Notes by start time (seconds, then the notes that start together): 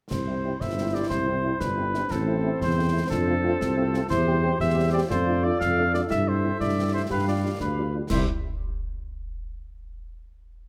0.10 C2 E4 C5, concert bass drum, snare, crash
0.27 G3 C4 E4
0.44 G3 C4 E4
0.61 G1 E4 E5, concert bass drum, snare
0.77 G3 C4 E4
0.93 G3 C4 E4 D5
1.09 C2 C5, concert bass drum, snare
1.27 G3 C4 E4
1.45 G3 C4 E4
1.60 G1 D4 B4, concert bass drum, snare
1.77 G3 C4 E4
1.94 G3 C4 E4, snare
2.10 A1 C4 E4 A4 C5, concert bass drum, snare
2.27 A3 C4 E4
2.43 A3 C4 E4
2.61 E2 C5, concert bass drum, snare
2.77 A3 C4 E4
2.93 A3 C4 E4
3.10 F2 D4 F4 A4, concert bass drum, snare
3.28 A3 C4 F4
3.44 A3 C4 F4
3.60 C2 C4, concert bass drum, snare
3.77 A3 C4 F4
3.94 A3 C4 F4, snare
4.10 E2 E4 G4 C5, concert bass drum, snare, crash
4.27 G3 C4 G4
4.44 G3 C4 G4
4.60 E2 G4 E5, concert bass drum, snare
4.76 G3 C4 G4
4.93 G3 C4 G4 D5
5.09 F2 F4 A4 C5 D5, concert bass drum, snare
5.27 A3 D4 F4
5.43 A3 D4 F4 D5
5.60 F2 F5, concert bass drum, snare
5.77 A3 D4 F4
5.94 A3 D4 F4 D5, snare
6.08 G2 E4 E5, concert bass drum, snare
6.27 G3 C4 E4 C5
6.45 G3 C4 E4
6.59 G2 E4 D5, concert bass drum, snare
6.77 G3 C4 E4
6.94 G3 C4 E4 C5
7.10 G2 G4 B4 F5, concert bass drum, snare
7.27 G3 D4 F4 D5
7.44 G3 D4 F4
7.60 D2 D4 B4, concert bass drum, snare
7.77 G3 D4 F4
7.94 G3 D4 F4
8.10 C2 G3 C4 E4 G4 C5 E5, concert bass drum, snare, crash